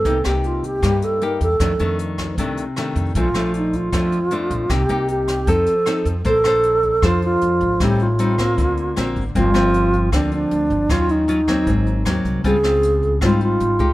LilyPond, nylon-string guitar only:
\new Staff \with { instrumentName = "Nylon-string guitar" } { \time 4/4 \key bes \major \tempo 4 = 155 << { <bes ees' g'>8 <bes ees' g'>4. <bes ees' g'>4 <bes ees' g'>8 r8 | <ees a d'>8 <ees a d'>4. <ees a d'>8 r8 <ees a d'>4 | <f a d'>8 <f a d'>4. <f a d'>8 r8 <f a d'>4 | <bes ees' g'>8 <bes ees' g'>4. <c' ees' a'>8 r8 <c' ees' a'>8 r8 |
<d' a' c''>8 <d' a' c''>4. <d' a' c''>2 | <g c' ees'>8 r8 <g c' ees'>8 <bes c'>4. <ais c' fis'>8 r8 | <f bes c'>8 <f bes c'>4. <f bes c'>2 | <ges des' f'>4 <ges des' f'>8 <ges bes c'>4. <ges bes c'>4 |
<g c' f'>8 <c' f'>4. <g c' f'>4. <aes ees' g'>8 | } \\ { c2 g,2 | f,2 c2 | bes,2 f,2 | c2 f2 |
bes2 f2 | a,2 d2 | g,2 d2 | ees2 aes,2 |
des2 aes,2 | } >> }